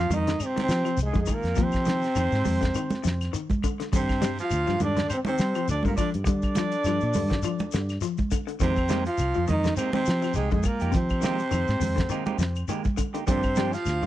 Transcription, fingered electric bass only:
0, 0, Header, 1, 2, 480
1, 0, Start_track
1, 0, Tempo, 585938
1, 1288, Time_signature, 4, 2, 24, 8
1, 11520, End_track
2, 0, Start_track
2, 0, Title_t, "Fingered electric bass"
2, 0, Program_c, 0, 33
2, 82, Note_on_c, 0, 41, 80
2, 276, Note_off_c, 0, 41, 0
2, 562, Note_on_c, 0, 53, 96
2, 671, Note_off_c, 0, 53, 0
2, 800, Note_on_c, 0, 36, 98
2, 910, Note_off_c, 0, 36, 0
2, 945, Note_on_c, 0, 41, 86
2, 1029, Note_off_c, 0, 41, 0
2, 1179, Note_on_c, 0, 41, 77
2, 1266, Note_off_c, 0, 41, 0
2, 1295, Note_on_c, 0, 53, 95
2, 1679, Note_off_c, 0, 53, 0
2, 1776, Note_on_c, 0, 41, 86
2, 1880, Note_off_c, 0, 41, 0
2, 1904, Note_on_c, 0, 44, 93
2, 1989, Note_off_c, 0, 44, 0
2, 2023, Note_on_c, 0, 41, 86
2, 2210, Note_off_c, 0, 41, 0
2, 2496, Note_on_c, 0, 41, 91
2, 2687, Note_off_c, 0, 41, 0
2, 3222, Note_on_c, 0, 43, 102
2, 3603, Note_off_c, 0, 43, 0
2, 3704, Note_on_c, 0, 38, 92
2, 3805, Note_off_c, 0, 38, 0
2, 3838, Note_on_c, 0, 43, 90
2, 3918, Note_off_c, 0, 43, 0
2, 3937, Note_on_c, 0, 43, 84
2, 4127, Note_off_c, 0, 43, 0
2, 4419, Note_on_c, 0, 55, 96
2, 4522, Note_off_c, 0, 55, 0
2, 4661, Note_on_c, 0, 38, 94
2, 4764, Note_off_c, 0, 38, 0
2, 4789, Note_on_c, 0, 43, 84
2, 4872, Note_off_c, 0, 43, 0
2, 5036, Note_on_c, 0, 43, 76
2, 5117, Note_off_c, 0, 43, 0
2, 5140, Note_on_c, 0, 55, 88
2, 5521, Note_off_c, 0, 55, 0
2, 5621, Note_on_c, 0, 43, 86
2, 5724, Note_off_c, 0, 43, 0
2, 5757, Note_on_c, 0, 46, 81
2, 5837, Note_off_c, 0, 46, 0
2, 5861, Note_on_c, 0, 43, 92
2, 6049, Note_off_c, 0, 43, 0
2, 6342, Note_on_c, 0, 43, 94
2, 6530, Note_off_c, 0, 43, 0
2, 7055, Note_on_c, 0, 41, 100
2, 7438, Note_off_c, 0, 41, 0
2, 7534, Note_on_c, 0, 36, 85
2, 7638, Note_off_c, 0, 36, 0
2, 7678, Note_on_c, 0, 41, 82
2, 7757, Note_off_c, 0, 41, 0
2, 7783, Note_on_c, 0, 41, 83
2, 7969, Note_off_c, 0, 41, 0
2, 8255, Note_on_c, 0, 53, 89
2, 8358, Note_off_c, 0, 53, 0
2, 8491, Note_on_c, 0, 36, 87
2, 8597, Note_off_c, 0, 36, 0
2, 8622, Note_on_c, 0, 41, 83
2, 8707, Note_off_c, 0, 41, 0
2, 8862, Note_on_c, 0, 41, 76
2, 8946, Note_off_c, 0, 41, 0
2, 8967, Note_on_c, 0, 53, 90
2, 9352, Note_off_c, 0, 53, 0
2, 9445, Note_on_c, 0, 41, 87
2, 9553, Note_off_c, 0, 41, 0
2, 9575, Note_on_c, 0, 44, 94
2, 9662, Note_off_c, 0, 44, 0
2, 9667, Note_on_c, 0, 41, 79
2, 9868, Note_off_c, 0, 41, 0
2, 10144, Note_on_c, 0, 41, 93
2, 10346, Note_off_c, 0, 41, 0
2, 10882, Note_on_c, 0, 43, 108
2, 11270, Note_off_c, 0, 43, 0
2, 11360, Note_on_c, 0, 38, 93
2, 11470, Note_off_c, 0, 38, 0
2, 11488, Note_on_c, 0, 43, 89
2, 11520, Note_off_c, 0, 43, 0
2, 11520, End_track
0, 0, End_of_file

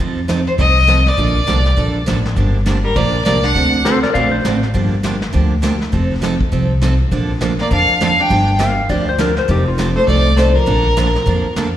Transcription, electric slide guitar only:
0, 0, Header, 1, 2, 480
1, 0, Start_track
1, 0, Key_signature, -2, "major"
1, 0, Tempo, 296589
1, 1913, Time_signature, 4, 2, 24, 8
1, 19047, End_track
2, 0, Start_track
2, 0, Title_t, "Electric slide guitar"
2, 0, Program_c, 0, 29
2, 6230, Note_on_c, 0, 69, 70
2, 6238, Note_on_c, 0, 72, 76
2, 6514, Note_off_c, 0, 69, 0
2, 6518, Note_off_c, 0, 72, 0
2, 6520, Note_on_c, 0, 70, 72
2, 6527, Note_on_c, 0, 74, 83
2, 6673, Note_off_c, 0, 74, 0
2, 6693, Note_on_c, 0, 74, 81
2, 6705, Note_on_c, 0, 77, 90
2, 6716, Note_off_c, 0, 70, 0
2, 6984, Note_on_c, 0, 72, 99
2, 6991, Note_off_c, 0, 77, 0
2, 6994, Note_off_c, 0, 74, 0
2, 7181, Note_off_c, 0, 72, 0
2, 13911, Note_on_c, 0, 77, 93
2, 14379, Note_off_c, 0, 77, 0
2, 14401, Note_on_c, 0, 74, 78
2, 14678, Note_off_c, 0, 74, 0
2, 14709, Note_on_c, 0, 72, 79
2, 14883, Note_off_c, 0, 72, 0
2, 14899, Note_on_c, 0, 70, 79
2, 15167, Note_off_c, 0, 70, 0
2, 15187, Note_on_c, 0, 72, 84
2, 15362, Note_off_c, 0, 72, 0
2, 15392, Note_on_c, 0, 67, 83
2, 15654, Note_off_c, 0, 67, 0
2, 15664, Note_on_c, 0, 65, 83
2, 15980, Note_off_c, 0, 65, 0
2, 19047, End_track
0, 0, End_of_file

